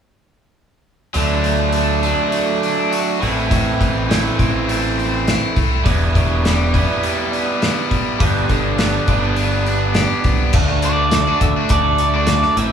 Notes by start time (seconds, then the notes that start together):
1.14 D2 D3 F#3 A3 D4, open hi-hat
1.43 A3, open hi-hat
1.72 A3, open hi-hat
2.02 F#3 A3 D4, open hi-hat
2.32 A3, open hi-hat
2.62 D4, open hi-hat
2.91 F#4, open hi-hat
3.20 A1 A2 E3 C4 E4, open hi-hat
3.50 A2, kick, open hi-hat
3.79 A1 E3, kick, open hi-hat
4.09 E3 A3 C4 E4, snare, open hi-hat
4.39 A1 C4, kick, open hi-hat
4.68 A3, open hi-hat
4.97 C4, open hi-hat
5.28 E4, snare, open hi-hat
5.56 C2 A3, kick, open hi-hat
5.84 E1 E2 G3 B3 E4, kick, open hi-hat
6.15 B2, kick, open hi-hat
6.44 G3, snare, open hi-hat
6.73 G3 B3 E4, kick, open hi-hat
7.03 G3, open hi-hat
7.32 B3, open hi-hat
7.62 E4, snare, open hi-hat
7.91 G3, kick, open hi-hat
8.19 G1 G2 G3 B3 D4, kick, open hi-hat
8.49 G1 D3, kick, open hi-hat
8.78 B3, snare, open hi-hat
9.07 G1 G3 B3 D4, kick, open hi-hat
9.36 B3, open hi-hat
9.66 D4, open hi-hat
9.94 G4, snare, open hi-hat
10.24 C2 B3, kick, open hi-hat
10.53 D2 A3 D4, kick, crash
10.57 F#4
10.69 muted overdriven electric guitar stroke
10.82 D3 A3 D4 F#4 D5, closed hi-hat
11.11 muted overdriven electric guitar stroke, snare, closed hi-hat
11.27 D3 A3 D4 F#4
11.41 D2 E5, kick, closed hi-hat
11.57 D3 A3 D4 F#4
11.69 D2 A3 D4 D5, muted overdriven electric guitar stroke, kick, closed hi-hat
11.73 F#4
11.98 closed hi-hat
12.14 D3 A3 D4 F#4 D5
12.27 snare, closed hi-hat
12.42 muted overdriven electric guitar stroke, snare
12.57 A1 E3 C4 E4 E5, closed hi-hat